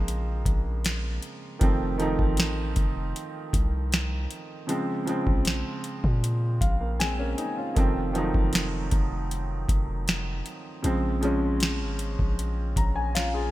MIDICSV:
0, 0, Header, 1, 4, 480
1, 0, Start_track
1, 0, Key_signature, -5, "minor"
1, 0, Tempo, 769231
1, 1006, Time_signature, 4, 2, 24, 8
1, 8431, End_track
2, 0, Start_track
2, 0, Title_t, "Grand piano"
2, 0, Program_c, 0, 0
2, 0, Control_c, 0, 64, 127
2, 0, Note_on_c, 0, 49, 85
2, 0, Note_on_c, 0, 53, 84
2, 0, Note_on_c, 0, 56, 83
2, 0, Note_on_c, 0, 58, 102
2, 0, Note_on_c, 0, 60, 93
2, 0, Note_on_c, 0, 63, 67
2, 72, Note_off_c, 0, 49, 0
2, 75, Note_off_c, 0, 53, 0
2, 79, Note_off_c, 0, 56, 0
2, 82, Note_off_c, 0, 58, 0
2, 994, Note_on_c, 0, 51, 85
2, 1001, Note_on_c, 0, 53, 79
2, 1009, Note_on_c, 0, 57, 81
2, 1015, Control_c, 0, 64, 0
2, 1016, Note_off_c, 0, 60, 0
2, 1016, Note_off_c, 0, 63, 0
2, 1016, Note_on_c, 0, 60, 100
2, 1111, Control_c, 0, 64, 127
2, 1188, Note_off_c, 0, 51, 0
2, 1191, Note_off_c, 0, 53, 0
2, 1195, Note_off_c, 0, 57, 0
2, 1198, Note_off_c, 0, 60, 0
2, 1234, Note_on_c, 0, 51, 93
2, 1241, Note_on_c, 0, 53, 84
2, 1248, Note_on_c, 0, 57, 84
2, 1256, Note_on_c, 0, 63, 101
2, 1991, Note_off_c, 0, 51, 0
2, 1995, Note_off_c, 0, 53, 0
2, 1998, Note_off_c, 0, 57, 0
2, 2002, Note_off_c, 0, 63, 0
2, 2913, Note_on_c, 0, 49, 82
2, 2921, Note_on_c, 0, 53, 81
2, 2928, Note_on_c, 0, 56, 82
2, 2934, Control_c, 0, 64, 0
2, 2935, Note_on_c, 0, 60, 91
2, 3049, Control_c, 0, 64, 127
2, 3107, Note_off_c, 0, 49, 0
2, 3111, Note_off_c, 0, 53, 0
2, 3115, Note_off_c, 0, 56, 0
2, 3118, Note_off_c, 0, 60, 0
2, 3155, Note_on_c, 0, 49, 91
2, 3162, Note_on_c, 0, 53, 80
2, 3169, Note_on_c, 0, 56, 81
2, 3176, Note_on_c, 0, 60, 96
2, 3911, Note_off_c, 0, 49, 0
2, 3915, Note_off_c, 0, 53, 0
2, 3918, Note_off_c, 0, 56, 0
2, 3922, Note_off_c, 0, 60, 0
2, 4125, Note_on_c, 0, 77, 70
2, 4247, Note_on_c, 0, 58, 60
2, 4349, Note_off_c, 0, 77, 0
2, 4360, Note_off_c, 0, 58, 0
2, 4365, Note_on_c, 0, 80, 78
2, 4366, Note_on_c, 0, 60, 71
2, 4370, Note_on_c, 0, 56, 59
2, 4480, Note_off_c, 0, 60, 0
2, 4482, Note_off_c, 0, 56, 0
2, 4485, Note_on_c, 0, 61, 69
2, 4490, Note_on_c, 0, 58, 59
2, 4600, Note_off_c, 0, 61, 0
2, 4602, Note_off_c, 0, 58, 0
2, 4604, Note_on_c, 0, 63, 72
2, 4607, Note_on_c, 0, 60, 59
2, 4719, Note_off_c, 0, 63, 0
2, 4721, Note_off_c, 0, 60, 0
2, 4726, Note_on_c, 0, 65, 64
2, 4730, Note_on_c, 0, 61, 51
2, 4821, Note_off_c, 0, 80, 0
2, 4834, Note_on_c, 0, 51, 81
2, 4841, Note_on_c, 0, 53, 75
2, 4848, Note_on_c, 0, 57, 76
2, 4853, Control_c, 0, 64, 0
2, 4855, Note_on_c, 0, 60, 96
2, 4952, Control_c, 0, 64, 127
2, 4954, Note_off_c, 0, 65, 0
2, 4956, Note_off_c, 0, 61, 0
2, 5028, Note_off_c, 0, 51, 0
2, 5031, Note_off_c, 0, 53, 0
2, 5034, Note_off_c, 0, 57, 0
2, 5038, Note_off_c, 0, 60, 0
2, 5075, Note_on_c, 0, 51, 90
2, 5082, Note_on_c, 0, 53, 81
2, 5089, Note_on_c, 0, 54, 66
2, 5096, Note_on_c, 0, 63, 94
2, 5128, Note_off_c, 0, 54, 0
2, 5129, Note_on_c, 0, 57, 81
2, 5831, Note_off_c, 0, 51, 0
2, 5835, Note_off_c, 0, 53, 0
2, 5842, Note_off_c, 0, 63, 0
2, 5858, Note_off_c, 0, 57, 0
2, 6754, Note_on_c, 0, 49, 85
2, 6761, Note_on_c, 0, 53, 76
2, 6768, Note_on_c, 0, 56, 77
2, 6774, Control_c, 0, 64, 0
2, 6776, Note_on_c, 0, 60, 91
2, 6893, Control_c, 0, 64, 127
2, 6948, Note_off_c, 0, 49, 0
2, 6951, Note_off_c, 0, 53, 0
2, 6955, Note_off_c, 0, 56, 0
2, 6958, Note_off_c, 0, 60, 0
2, 6995, Note_on_c, 0, 49, 86
2, 7002, Note_on_c, 0, 53, 81
2, 7009, Note_on_c, 0, 56, 81
2, 7016, Note_on_c, 0, 61, 96
2, 7751, Note_off_c, 0, 49, 0
2, 7755, Note_off_c, 0, 53, 0
2, 7758, Note_off_c, 0, 56, 0
2, 7762, Note_off_c, 0, 61, 0
2, 7967, Note_on_c, 0, 82, 73
2, 8078, Note_off_c, 0, 82, 0
2, 8085, Note_on_c, 0, 80, 72
2, 8197, Note_off_c, 0, 80, 0
2, 8205, Note_on_c, 0, 65, 71
2, 8205, Note_on_c, 0, 77, 77
2, 8209, Note_on_c, 0, 61, 59
2, 8319, Note_off_c, 0, 65, 0
2, 8321, Note_off_c, 0, 61, 0
2, 8325, Note_on_c, 0, 68, 77
2, 8328, Note_on_c, 0, 65, 63
2, 8428, Note_off_c, 0, 77, 0
2, 8431, Note_off_c, 0, 65, 0
2, 8431, Note_off_c, 0, 68, 0
2, 8431, End_track
3, 0, Start_track
3, 0, Title_t, "808-style bass"
3, 0, Program_c, 1, 38
3, 0, Note_on_c, 1, 34, 107
3, 272, Note_off_c, 1, 34, 0
3, 285, Note_on_c, 1, 34, 104
3, 746, Note_off_c, 1, 34, 0
3, 1006, Note_on_c, 1, 29, 111
3, 1351, Note_off_c, 1, 29, 0
3, 1366, Note_on_c, 1, 33, 101
3, 1712, Note_off_c, 1, 33, 0
3, 1725, Note_on_c, 1, 29, 107
3, 1956, Note_off_c, 1, 29, 0
3, 2205, Note_on_c, 1, 36, 97
3, 2666, Note_off_c, 1, 36, 0
3, 3287, Note_on_c, 1, 34, 98
3, 3517, Note_off_c, 1, 34, 0
3, 3769, Note_on_c, 1, 46, 109
3, 4113, Note_off_c, 1, 46, 0
3, 4125, Note_on_c, 1, 34, 102
3, 4586, Note_off_c, 1, 34, 0
3, 4846, Note_on_c, 1, 29, 108
3, 5191, Note_off_c, 1, 29, 0
3, 5207, Note_on_c, 1, 29, 104
3, 5552, Note_off_c, 1, 29, 0
3, 5566, Note_on_c, 1, 29, 108
3, 6026, Note_off_c, 1, 29, 0
3, 6044, Note_on_c, 1, 29, 102
3, 6506, Note_off_c, 1, 29, 0
3, 6765, Note_on_c, 1, 34, 100
3, 7365, Note_on_c, 1, 32, 97
3, 7374, Note_off_c, 1, 34, 0
3, 7593, Note_off_c, 1, 32, 0
3, 7608, Note_on_c, 1, 34, 106
3, 7952, Note_off_c, 1, 34, 0
3, 7965, Note_on_c, 1, 34, 100
3, 8426, Note_off_c, 1, 34, 0
3, 8431, End_track
4, 0, Start_track
4, 0, Title_t, "Drums"
4, 51, Note_on_c, 9, 42, 79
4, 113, Note_off_c, 9, 42, 0
4, 284, Note_on_c, 9, 36, 97
4, 287, Note_on_c, 9, 42, 77
4, 347, Note_off_c, 9, 36, 0
4, 350, Note_off_c, 9, 42, 0
4, 527, Note_on_c, 9, 42, 71
4, 535, Note_on_c, 9, 38, 126
4, 590, Note_off_c, 9, 42, 0
4, 597, Note_off_c, 9, 38, 0
4, 764, Note_on_c, 9, 42, 64
4, 827, Note_off_c, 9, 42, 0
4, 1005, Note_on_c, 9, 42, 82
4, 1006, Note_on_c, 9, 36, 116
4, 1067, Note_off_c, 9, 42, 0
4, 1068, Note_off_c, 9, 36, 0
4, 1246, Note_on_c, 9, 42, 60
4, 1308, Note_off_c, 9, 42, 0
4, 1367, Note_on_c, 9, 36, 100
4, 1429, Note_off_c, 9, 36, 0
4, 1480, Note_on_c, 9, 42, 73
4, 1495, Note_on_c, 9, 38, 122
4, 1542, Note_off_c, 9, 42, 0
4, 1558, Note_off_c, 9, 38, 0
4, 1722, Note_on_c, 9, 42, 69
4, 1725, Note_on_c, 9, 36, 91
4, 1784, Note_off_c, 9, 42, 0
4, 1788, Note_off_c, 9, 36, 0
4, 1972, Note_on_c, 9, 42, 77
4, 2034, Note_off_c, 9, 42, 0
4, 2205, Note_on_c, 9, 36, 96
4, 2208, Note_on_c, 9, 42, 79
4, 2267, Note_off_c, 9, 36, 0
4, 2270, Note_off_c, 9, 42, 0
4, 2449, Note_on_c, 9, 42, 74
4, 2456, Note_on_c, 9, 38, 125
4, 2511, Note_off_c, 9, 42, 0
4, 2519, Note_off_c, 9, 38, 0
4, 2687, Note_on_c, 9, 42, 65
4, 2749, Note_off_c, 9, 42, 0
4, 2926, Note_on_c, 9, 42, 74
4, 2988, Note_off_c, 9, 42, 0
4, 3166, Note_on_c, 9, 42, 62
4, 3229, Note_off_c, 9, 42, 0
4, 3287, Note_on_c, 9, 36, 98
4, 3350, Note_off_c, 9, 36, 0
4, 3401, Note_on_c, 9, 42, 77
4, 3416, Note_on_c, 9, 38, 120
4, 3463, Note_off_c, 9, 42, 0
4, 3478, Note_off_c, 9, 38, 0
4, 3644, Note_on_c, 9, 42, 66
4, 3706, Note_off_c, 9, 42, 0
4, 3768, Note_on_c, 9, 36, 89
4, 3831, Note_off_c, 9, 36, 0
4, 3893, Note_on_c, 9, 42, 79
4, 3955, Note_off_c, 9, 42, 0
4, 4125, Note_on_c, 9, 36, 97
4, 4129, Note_on_c, 9, 42, 79
4, 4187, Note_off_c, 9, 36, 0
4, 4191, Note_off_c, 9, 42, 0
4, 4369, Note_on_c, 9, 42, 73
4, 4376, Note_on_c, 9, 38, 117
4, 4431, Note_off_c, 9, 42, 0
4, 4439, Note_off_c, 9, 38, 0
4, 4605, Note_on_c, 9, 42, 64
4, 4668, Note_off_c, 9, 42, 0
4, 4845, Note_on_c, 9, 42, 76
4, 4846, Note_on_c, 9, 36, 123
4, 4908, Note_off_c, 9, 36, 0
4, 4908, Note_off_c, 9, 42, 0
4, 5086, Note_on_c, 9, 42, 60
4, 5149, Note_off_c, 9, 42, 0
4, 5207, Note_on_c, 9, 36, 99
4, 5270, Note_off_c, 9, 36, 0
4, 5321, Note_on_c, 9, 42, 72
4, 5336, Note_on_c, 9, 38, 123
4, 5383, Note_off_c, 9, 42, 0
4, 5398, Note_off_c, 9, 38, 0
4, 5562, Note_on_c, 9, 42, 68
4, 5565, Note_on_c, 9, 36, 95
4, 5625, Note_off_c, 9, 42, 0
4, 5628, Note_off_c, 9, 36, 0
4, 5811, Note_on_c, 9, 42, 79
4, 5874, Note_off_c, 9, 42, 0
4, 6044, Note_on_c, 9, 36, 93
4, 6048, Note_on_c, 9, 42, 72
4, 6107, Note_off_c, 9, 36, 0
4, 6110, Note_off_c, 9, 42, 0
4, 6288, Note_on_c, 9, 42, 75
4, 6295, Note_on_c, 9, 38, 123
4, 6350, Note_off_c, 9, 42, 0
4, 6357, Note_off_c, 9, 38, 0
4, 6525, Note_on_c, 9, 42, 63
4, 6587, Note_off_c, 9, 42, 0
4, 6765, Note_on_c, 9, 42, 79
4, 6827, Note_off_c, 9, 42, 0
4, 7005, Note_on_c, 9, 42, 61
4, 7068, Note_off_c, 9, 42, 0
4, 7240, Note_on_c, 9, 42, 71
4, 7255, Note_on_c, 9, 38, 125
4, 7303, Note_off_c, 9, 42, 0
4, 7318, Note_off_c, 9, 38, 0
4, 7482, Note_on_c, 9, 42, 67
4, 7544, Note_off_c, 9, 42, 0
4, 7607, Note_on_c, 9, 36, 88
4, 7670, Note_off_c, 9, 36, 0
4, 7731, Note_on_c, 9, 42, 81
4, 7794, Note_off_c, 9, 42, 0
4, 7964, Note_on_c, 9, 36, 97
4, 7968, Note_on_c, 9, 42, 75
4, 8027, Note_off_c, 9, 36, 0
4, 8030, Note_off_c, 9, 42, 0
4, 8208, Note_on_c, 9, 42, 75
4, 8215, Note_on_c, 9, 38, 127
4, 8270, Note_off_c, 9, 42, 0
4, 8277, Note_off_c, 9, 38, 0
4, 8431, End_track
0, 0, End_of_file